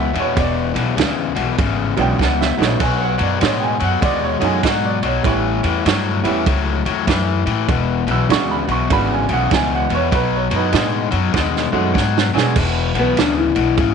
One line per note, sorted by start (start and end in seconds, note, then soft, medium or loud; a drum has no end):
0.00 0.10 C#2 medium
0.00 0.10 E2 medium
0.00 0.10 B2 loud
0.00 0.17 E5 medium
0.13 0.34 E2 medium
0.13 0.34 B2 medium
0.13 ride medium
0.20 0.38 C#5 medium
0.36 0.71 E1 medium
0.36 0.71 E2 medium
0.36 0.71 B2 medium
0.36 1.56 D5 medium
0.36 kick loud
0.36 ride medium
0.74 0.95 B1 medium
0.74 0.95 E2 medium
0.74 0.95 B2 medium
0.74 ride medium
0.96 1.32 D2 medium
0.96 1.32 E2 medium
0.96 1.32 C#3 medium
0.96 snare loud
0.96 ride medium
1.35 1.56 B1 medium
1.35 1.56 E2 medium
1.35 1.56 B2 medium
1.35 ride medium
1.58 1.93 G#1 medium
1.58 1.93 E2 medium
1.58 1.93 C#3 medium
1.58 kick loud
1.58 ride medium
1.96 2.17 B1 medium
1.96 2.17 E2 medium
1.96 2.17 C#3 medium
1.96 2.17 F#3 medium
1.96 2.17 G#3 medium
1.96 2.17 B3 medium
1.96 2.18 D4 medium
1.96 2.02 F#5 medium
1.96 ride medium
2.01 2.20 G5 loud
2.18 2.54 C#2 medium
2.18 2.54 E2 medium
2.18 2.54 B2 medium
2.18 2.40 F#5 medium
2.18 kick medium
2.18 snare medium
2.41 2.60 E5 medium
2.41 snare medium
2.57 2.78 A#1 medium
2.57 2.78 E2 medium
2.57 2.78 B2 medium
2.57 2.78 F#3 medium
2.57 2.78 A3 medium
2.57 2.79 C#4 medium
2.57 2.79 D#4 medium
2.62 2.81 C#5 medium
2.62 snare loud
2.79 3.15 B1 medium
2.79 3.15 B2 medium
2.79 3.15 F#3 loud
2.79 3.01 G#5 medium
2.79 kick loud
2.79 ride medium
2.79 crash medium
3.02 3.21 F#5 medium
3.18 3.40 F#2 medium
3.18 3.39 B2 medium
3.18 3.39 F#3 medium
3.18 ride medium
3.22 3.42 D5 medium
3.40 3.76 A2 medium
3.40 3.76 B2 medium
3.40 3.76 G#3 medium
3.40 3.62 C#5 medium
3.40 snare loud
3.40 ride medium
3.59 3.66 G5 medium
3.64 3.82 G#5 medium
3.80 4.00 F#2 medium
3.80 4.00 B2 medium
3.80 4.00 F#3 medium
3.80 ride medium
3.84 4.03 F#5 medium
4.01 4.37 D#2 medium
4.01 4.37 B2 medium
4.01 4.37 G#3 medium
4.01 4.23 D5 loud
4.01 kick loud
4.01 ride medium
4.25 4.43 C#5 medium
4.39 4.61 F#2 medium
4.39 4.61 B2 medium
4.39 4.60 F#3 medium
4.39 4.61 G#3 medium
4.39 4.61 A3 medium
4.39 4.61 C#4 medium
4.39 4.61 D#4 medium
4.39 ride medium
4.45 4.64 G#5 medium
4.63 4.98 G#2 medium
4.63 4.98 B2 medium
4.63 4.98 F#3 medium
4.63 4.84 F#5 medium
4.63 kick medium
4.63 snare loud
4.63 ride medium
4.85 5.04 D5 medium
5.02 5.22 B1 medium
5.02 5.22 B2 medium
5.02 5.22 F#3 medium
5.02 5.25 C#5 medium
5.02 ride medium
5.23 5.59 A1 medium
5.23 5.59 A2 medium
5.23 5.60 E3 medium
5.23 6.16 G3 medium
5.23 6.16 B3 medium
5.23 6.16 C#4 medium
5.23 6.17 E4 medium
5.23 6.44 C#5 medium
5.23 kick loud
5.23 ride medium
5.63 5.83 E2 medium
5.63 5.83 A2 medium
5.63 5.83 E3 medium
5.63 ride medium
5.85 6.20 G2 loud
5.85 6.20 A2 medium
5.85 6.21 F#3 medium
5.85 snare loud
5.85 ride medium
6.23 6.44 E2 medium
6.23 6.44 A2 medium
6.23 6.44 E3 medium
6.23 6.44 G3 medium
6.23 6.44 B3 medium
6.23 6.44 C#4 medium
6.23 6.45 E4 medium
6.23 ride medium
6.46 6.81 C#2 loud
6.46 6.81 A2 medium
6.46 6.82 F#3 medium
6.46 kick loud
6.46 ride medium
6.85 7.05 E2 medium
6.85 7.05 A2 medium
6.85 7.06 F#3 medium
6.85 ride medium
7.07 7.42 F#2 loud
7.07 7.42 A2 medium
7.07 7.42 E3 medium
7.07 kick medium
7.07 snare loud
7.07 ride medium
7.46 7.66 A2 medium
7.46 7.66 E3 medium
7.46 ride medium
7.68 8.03 E1 loud
7.68 8.03 E2 medium
7.68 8.04 B2 medium
7.68 kick loud
7.68 ride medium
8.07 8.27 B1 medium
8.07 8.27 E2 medium
8.07 8.27 B2 medium
8.07 ride medium
8.11 8.30 E6 medium
8.29 8.63 D2 medium
8.29 8.64 E2 loud
8.29 8.64 C#3 medium
8.29 8.64 G#3 medium
8.29 8.64 B3 medium
8.29 8.64 D4 medium
8.29 8.65 F#4 medium
8.29 8.50 C#6 medium
8.29 snare loud
8.29 ride medium
8.51 8.70 B5 medium
8.68 8.88 B1 medium
8.68 8.88 E2 medium
8.68 8.88 B2 medium
8.68 ride medium
8.72 8.91 C#6 medium
8.90 9.25 G#1 medium
8.90 9.25 E2 medium
8.90 9.25 C#3 medium
8.90 9.25 G#3 medium
8.90 9.25 B3 medium
8.90 9.26 D4 medium
8.90 9.26 F#4 medium
8.90 9.11 B5 loud
8.90 kick loud
8.90 ride medium
9.12 9.31 G#5 loud
9.29 9.49 B1 medium
9.29 9.49 E2 medium
9.29 9.49 C#3 medium
9.29 ride medium
9.33 9.52 F#5 loud
9.51 9.86 C#2 medium
9.51 9.86 E2 loud
9.51 9.87 B2 loud
9.51 9.72 G#5 loud
9.51 kick medium
9.51 snare loud
9.51 ride medium
9.75 9.93 F#5 loud
9.90 10.10 E2 medium
9.90 10.10 B2 medium
9.90 ride medium
9.95 10.13 C#5 loud
10.11 10.47 B1 medium
10.11 10.47 B2 medium
10.11 10.47 F#3 medium
10.11 kick loud
10.11 ride medium
10.15 10.33 B4 medium
10.36 10.54 C#5 medium
10.50 10.71 F#2 medium
10.50 10.71 B2 medium
10.50 10.71 F#3 medium
10.50 ride medium
10.55 11.72 D#4 medium
10.55 11.73 B4 medium
10.72 11.08 A2 loud
10.72 11.08 B2 medium
10.72 11.08 G#3 loud
10.72 snare loud
10.72 ride medium
11.11 11.32 F#2 loud
11.11 11.31 B2 medium
11.11 11.31 F#3 loud
11.11 ride medium
11.33 11.68 D#2 loud
11.33 11.69 B2 medium
11.33 11.69 G#3 medium
11.33 kick loud
11.33 snare medium
11.56 snare medium
11.72 11.92 F#2 loud
11.72 11.92 B2 medium
11.72 11.93 G#3 medium
11.72 11.92 A3 medium
11.72 11.93 C#4 medium
11.72 11.93 D#4 medium
11.72 11.93 F#4 medium
11.94 12.29 G#2 loud
11.94 12.29 B2 medium
11.94 12.30 F#3 medium
11.94 kick medium
11.94 snare medium
12.18 snare loud
12.33 12.54 E2 medium
12.33 12.53 B2 medium
12.33 12.54 F#3 medium
12.33 12.54 G#3 medium
12.33 12.54 B3 medium
12.33 12.54 D4 medium
12.33 12.55 G#4 medium
12.33 snare medium
12.56 12.90 E1 medium
12.56 12.91 E2 medium
12.56 12.91 B2 medium
12.56 kick loud
12.56 crash loud
12.94 13.14 B1 medium
12.94 13.14 E2 medium
12.94 13.15 B2 medium
12.94 ride medium
12.99 13.18 B3 loud
13.16 13.51 D2 medium
13.16 13.51 E2 medium
13.16 13.52 C#3 medium
13.16 13.39 D4 medium
13.16 snare loud
13.16 ride medium
13.39 13.94 E4 medium
13.55 13.75 B1 medium
13.55 13.75 E2 medium
13.55 13.75 B2 medium
13.55 ride medium
13.77 13.94 G#1 medium
13.77 13.94 E2 medium
13.77 13.94 C#3 medium
13.77 kick loud
13.77 ride medium